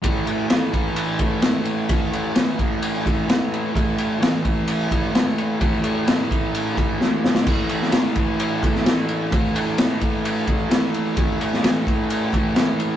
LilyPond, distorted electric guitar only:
\new Staff \with { instrumentName = "Distorted electric guitar" } { \clef bass \time 4/4 \key c \major \tempo 4 = 129 <a, e a>8 <e a>8 <a, e a>8 <e a>4 <e a>8 <a, e a>4 | <a, e a>8 <e a>8 <a, e a>8 <e a>4 <e a>8 <a, e a>4 | <a, e a>8 <e a>8 <a, e a>8 <e a>4 <e a>8 <a, e a>4 | <a, e a>8 <e a>8 <a, e a>8 <e a>4 <e a>8 <a, e a>4 |
<a, e a>8 <e a>8 <a, e a>8 <e a>4 <e a>8 <a, e a>4 | <a, e a>8 <e a>8 <a, e a>8 <e a>4 <e a>8 <a, e a>4 | <a, e a>8 <e a>8 <a, e a>8 <e a>4 <e a>8 <a, e a>4 | }